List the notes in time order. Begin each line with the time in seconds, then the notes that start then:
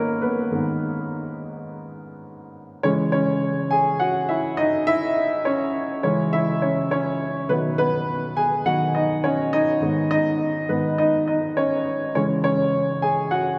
Already playing: G#2 D#3 A#3 B3 C#4 D#4 A#4 B4 C#5 D#5
0.22 B3 B4
0.51 G#2 D#3 B3
2.83 C#3 E3 G#3 C#4 C#5
3.12 C#4 C#5
3.71 G#4 G#5
4.00 F#4 F#5
4.29 E4 E5
4.57 D#4 D#5
4.87 E4 E5
5.45 C#4 C#5
6.03 C#3 E3 G#3 C#4 C#5
6.33 E4 E5
6.62 C#4 C#5
6.91 C#4 C#5
7.49 B2 D#3 F#3 B3 B4
7.78 B3 B4
8.37 G#4 G#5
8.66 B2 D#3 F#3 F#4 F#5
8.95 D#4 D#5
9.24 C#4 C#5
9.53 D#4 D#5
9.82 G#2 D#3 B3
10.11 D#4 D#5
10.69 G#2 D#3 B3 B4
10.98 D#4 D#5
11.28 D#4 D#5
11.57 C#4 C#5
12.15 C#3 E3 G#3 C#4 C#5
12.44 C#4 C#5
13.02 G#4 G#5
13.31 F#4 F#5